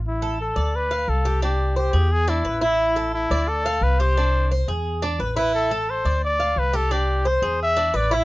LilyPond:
<<
  \new Staff \with { instrumentName = "Trumpet" } { \time 4/4 \key a \minor \tempo 4 = 175 e'4 a'4 b'4 a'4 | g'4 g'4 gis'8 e'4 e'8~ | e'4 e'4 a'4 b'8 c''8~ | c''4 r2 r8 b'8 |
a'4 c''4 d''4 b'8 a'8 | g'4 c''4 e''4 d''8 e'8 | }
  \new Staff \with { instrumentName = "Cuban tres" } { \time 4/4 \key a \minor r8 a'4 d''4 f''4 g'8 | d'4 c''8 gis'4 d'8 b'8 e'8~ | e'8 a'4 d''4 f''4 g'8 | d'4 c''8 gis'4 d'8 b'8 e'8~ |
e'8 a'4 d''4 f''4 g'8 | d'4 c''8 gis'4 d'8 b'8 e'8 | }
  \new Staff \with { instrumentName = "Upright bass" } { \clef bass \time 4/4 \key a \minor a,,4. d,4. c,4~ | c,4. e,4. a,,4~ | a,,4. d,4. c,4~ | c,4. e,4. a,,4~ |
a,,4. d,4. c,4~ | c,4. e,4. a,,4 | }
>>